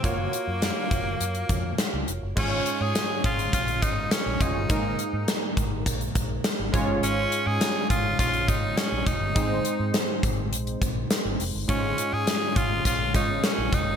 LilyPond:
<<
  \new Staff \with { instrumentName = "Tenor saxophone" } { \time 4/4 \key des \lydian \tempo 4 = 103 bes2.~ bes8 r8 | des'8. aes'8. f'8 f'8 ees'8 des'8 ees'8~ | ees'4 r2. | des'8. aes'8. f'8 f'8 ees'8 des'8 ees'8~ |
ees'4 r2. | des'8. aes'8. f'8 f'8 ees'8 des'8 ees'8 | }
  \new Staff \with { instrumentName = "Synth keys" } { \time 4/4 \key des \lydian << { <bes f' ges' des''>1 | <aes des' f' des''>2.~ <aes des' f' des''>8 <aes des' f' des''>8 | <aes bes ees' bes'>2.~ <aes bes ees' bes'>8 <aes des' f' des''>8~ | <aes des' f' des''>2.~ <aes des' f' des''>8 r8 |
<aes c' ees' c''>1 | <aes des' f' des''>2~ <aes des' f' des''>8 <aes des' f' des''>4. | } \\ { r1 | aes,4. r2 r8 | aes,4. r2 aes,8~ | aes,4 r2. |
aes,4. r2 r8 | aes,4. r2 r8 | } >> }
  \new Staff \with { instrumentName = "Fingered electric bass" } { \clef bass \time 4/4 \key des \lydian ges,,8 r16 ges,8 r16 ges,,8 ges,8 f,8 r16 des,16 f,,16 ges,,16 | aes,,8 r16 aes,16 r8 aes,,8 bes,,8 aes,,8 r16 bes,,16 f,,16 g,,16 | aes,,8 r16 aes,16 r8 aes,,8 bes,,8 bes,,8 r16 aes,,16 aes,,16 g,,16 | aes,,8 r16 aes,16 r8 aes,,8 bes,,8 aes,,8 r16 bes,,16 f,,16 g,,16 |
aes,,8 r16 aes,16 r8 aes,,8 bes,,8 bes,,8 r16 aes,,16 f,,16 g,,16 | aes,,8 r16 aes,16 r8 aes,,8 bes,,8 aes,,8 r16 bes,,16 f,,16 g,,16 | }
  \new DrumStaff \with { instrumentName = "Drums" } \drummode { \time 4/4 <hh bd>8 hh8 <hh sn>8 <hh bd>8 hh16 hh16 <hh bd>8 <hh sn>8 hh8 | <cymc bd>8 hh8 <hh sn>8 <hh bd>16 hh16 <hh bd>16 hh16 <hh bd>8 <hh sn>8 <hh bd>8 | <hh bd>8 hh8 <hh sn>8 <hh bd>8 <hh bd>16 hh16 <hh bd>8 <hh sn>8 <hh bd>8 | hh8 hh8 <hh sn>8 <hh bd>8 <hh bd>16 hh16 <hh bd>8 <hh sn>8 <hh bd>8 |
<hh bd>8 hh8 <hh sn>8 <hh bd>8 hh16 hh16 <hh bd>8 <hh sn>8 hho8 | <hh bd>8 hh8 <hh sn>8 <hh bd>8 <hh bd>8 <hh bd>8 <hh sn>8 <hh bd>8 | }
>>